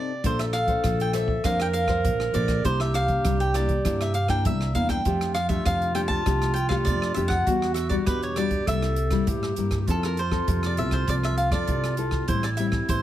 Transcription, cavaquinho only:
Already playing: D5
0.26 C5
0.39 E5
0.53 F5
1.01 G5
1.14 E5
1.45 F5
1.61 G5
1.73 F5
2.35 D5
2.65 C5
2.81 E5
2.95 F5
3.40 G5
3.55 D5
4.02 E5
4.15 F5
4.30 G5
4.46 E5
4.75 F5
4.90 G5
5.34 F5
5.49 E5
5.66 F5
5.95 G5
6.08 A5
6.54 G5
6.69 F5
6.85 D5
7.14 E5
7.28 F#5
7.74 E5
7.89 D5
8.07 B4
8.23 C#5
8.37 D5
8.68 E5
9.90 A4
10.06 A#4
10.19 C5
10.66 D5
10.78 E5
10.93 C5
11.09 D5
11.24 E5
11.38 F5
11.52 D5
12.28 C5
12.44 D5
12.57 E5
12.89 C5

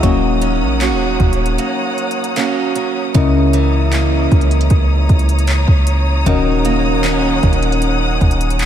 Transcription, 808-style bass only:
0.03 D#1
0.62 A#1
0.91 D#1
1.20 D#1
3.15 C#2
4.32 C#2
4.71 C#2
5.10 C#2
5.68 C#2
6.27 D#1
7.43 D#1
8.22 D#1

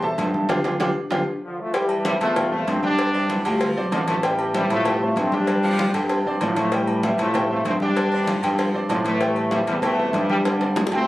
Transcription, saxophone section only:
3.14 C3
3.29 E3
3.44 F3
5.63 F3
5.71 F3
5.93 D3
6.10 C3
8.12 D3
8.19 E3
8.27 F3
8.52 E3
8.58 F3

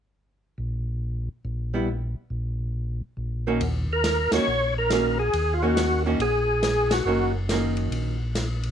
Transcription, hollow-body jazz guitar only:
1.74 G3 B3 E4
3.47 D#3 A#3 C#4 F#4
4.32 D#3 A#3 C#4 F#4
4.92 D#3 A#3 C#4 F#4
5.62 D#3 A#3 C#4 F#4
6.06 D#3 A#3 C#4 F#4
7.07 D#3 A#3 C#4 F#4
7.50 D#3 A#3 C#4 F#4

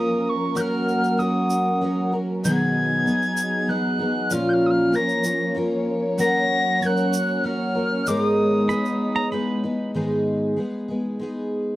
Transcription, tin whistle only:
Already playing: D#6
0.25 C#6 D#6
0.56 F6 G6
1.18 D#6
2.44 G#6
3.69 F#6
4.32 F6
4.49 G6
4.53 F6
4.66 D#6
4.70 F6
4.95 A#6
6.20 A#6
6.82 F#6 G#6
7.44 F6
8.07 D6
8.25 D#6

